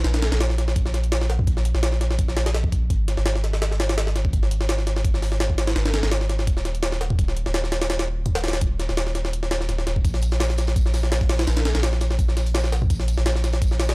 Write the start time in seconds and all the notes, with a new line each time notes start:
0.04 A#1, snare, closed hi-hat
0.14 snare, closed hi-hat
0.22 snare, closed hi-hat
0.32 A#1, snare, closed hi-hat
0.41 snare, closed hi-hat
0.50 snare
0.58 snare, closed hi-hat
0.68 snare
0.76 kick, closed hi-hat
0.86 snare
0.94 snare, closed hi-hat
1.04 closed hi-hat
1.12 snare, closed hi-hat
1.21 snare
1.30 snare, closed hi-hat
1.39 kick
1.47 A#1, kick, closed hi-hat
1.57 snare
1.65 closed hi-hat
1.74 A#1, snare
1.83 snare, closed hi-hat
1.92 snare
2.01 snare, closed hi-hat
2.11 snare
2.19 kick, closed hi-hat
2.28 snare
2.37 snare, closed hi-hat
2.46 snare, closed hi-hat
2.54 snare, closed hi-hat
2.64 kick
2.72 kick, closed hi-hat
2.90 G#1, kick, closed hi-hat
3.08 snare, closed hi-hat
3.17 G#1, snare
3.26 snare, closed hi-hat
3.36 snare
3.44 snare, closed hi-hat
3.53 snare
3.62 snare, closed hi-hat
3.72 snare
3.80 snare, closed hi-hat
3.89 snare, closed hi-hat
3.98 snare, closed hi-hat
4.07 snare
4.16 snare, closed hi-hat
4.25 kick
4.33 G#1, kick, closed hi-hat
4.43 snare
4.51 closed hi-hat
4.61 snare
4.69 snare, closed hi-hat
4.79 snare
4.87 snare, closed hi-hat
4.96 snare
5.05 kick, closed hi-hat
5.14 snare
5.22 snare, open hi-hat
5.32 snare
5.40 snare, closed hi-hat
5.50 kick
5.58 snare, closed hi-hat
5.67 snare, closed hi-hat
5.76 G#1, snare, closed hi-hat
5.85 snare, closed hi-hat
5.94 snare, closed hi-hat
6.03 G#1, snare, closed hi-hat
6.12 snare, closed hi-hat
6.21 snare
6.29 snare, closed hi-hat
6.39 snare
6.47 D#1, kick, closed hi-hat
6.57 snare
6.65 snare, closed hi-hat
6.75 closed hi-hat
6.83 snare, closed hi-hat
6.92 snare
7.01 snare, closed hi-hat
7.10 kick
7.19 D#1, kick, closed hi-hat
7.28 snare
7.37 closed hi-hat
7.46 D#1, snare
7.54 snare, closed hi-hat
7.64 snare
7.72 snare, closed hi-hat
7.82 snare, closed hi-hat
7.90 snare, closed hi-hat
7.99 snare, closed hi-hat
8.26 kick, closed hi-hat
8.35 snare, closed hi-hat
8.44 snare, closed hi-hat
8.48 snare, closed hi-hat
8.53 snare, closed hi-hat
8.61 D#1, kick, closed hi-hat
8.79 snare, closed hi-hat
8.89 D#1, snare
8.97 snare, closed hi-hat
9.07 snare
9.15 snare, closed hi-hat
9.25 snare
9.33 closed hi-hat
9.43 snare
9.51 snare, closed hi-hat
9.61 snare
9.69 D#1, snare, closed hi-hat
9.79 snare
9.87 D#1, snare, closed hi-hat
9.96 kick
10.05 A#1, kick, closed hi-hat, tambourine
10.14 snare, closed hi-hat
10.22 closed hi-hat, tambourine
10.32 snare, closed hi-hat
10.40 snare, closed hi-hat, tambourine
10.50 snare, closed hi-hat
10.58 snare, closed hi-hat, tambourine
10.67 snare, closed hi-hat
10.76 kick, closed hi-hat, tambourine
10.86 snare
10.94 snare, open hi-hat, tambourine
11.03 snare
11.12 snare, closed hi-hat, tambourine
11.21 kick, closed hi-hat
11.29 snare, closed hi-hat, open hi-hat
11.39 snare, closed hi-hat
11.47 A#1, snare, closed hi-hat, tambourine
11.57 snare, closed hi-hat
11.65 snare, closed hi-hat, tambourine
11.75 A#1, snare, closed hi-hat
11.83 snare, closed hi-hat, tambourine
11.93 snare
12.01 snare, closed hi-hat, tambourine
12.11 snare
12.19 kick, closed hi-hat, tambourine
12.28 snare
12.37 snare, closed hi-hat, tambourine
12.46 closed hi-hat
12.54 snare, closed hi-hat, tambourine
12.64 snare
12.72 snare, closed hi-hat, tambourine
12.82 kick
12.90 A#1, kick, closed hi-hat, tambourine
13.00 snare, closed hi-hat
13.08 closed hi-hat, tambourine
13.18 A#1, snare, closed hi-hat
13.26 snare, closed hi-hat, tambourine
13.36 snare, closed hi-hat
13.44 snare, closed hi-hat, tambourine
13.52 snare, closed hi-hat
13.62 kick, closed hi-hat, tambourine
13.71 snare
13.80 snare, closed hi-hat, tambourine
13.88 snare, closed hi-hat